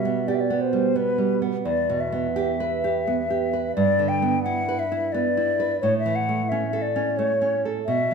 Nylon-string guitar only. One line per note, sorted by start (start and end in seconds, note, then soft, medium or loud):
0.00 1.61 B2 soft
0.00 0.19 G3 soft
0.05 0.41 B3 soft
0.28 0.64 G4 soft
0.50 0.86 B3 soft
0.73 1.09 G3 soft
0.96 1.32 B3 soft
1.18 1.56 G3 soft
1.42 1.65 B3 soft
1.65 3.71 E2 soft
1.89 2.26 B2 soft
2.12 2.49 B3 soft
2.36 2.60 G4 medium
2.60 2.97 B4 soft
2.84 3.21 G4 soft
3.07 3.44 B3 soft
3.30 3.66 G4 soft
3.53 3.75 B4 soft
3.77 5.78 G2 medium
3.99 4.35 D3 soft
4.22 4.59 B3 soft
4.46 4.82 E4 soft
4.69 5.05 B4 soft
4.92 5.27 E4 soft
5.14 5.50 B3 medium
5.37 5.73 E4 soft
5.60 5.82 B4 soft
5.83 7.83 A2 soft
6.06 6.41 E3 soft
6.29 6.64 A3 soft
6.52 6.86 C#4 medium
6.73 7.09 A4 soft
6.96 7.32 C#4 soft
7.19 7.55 A3 soft
7.42 7.78 C#4 soft
7.65 7.87 A4 soft
7.88 8.14 B2 medium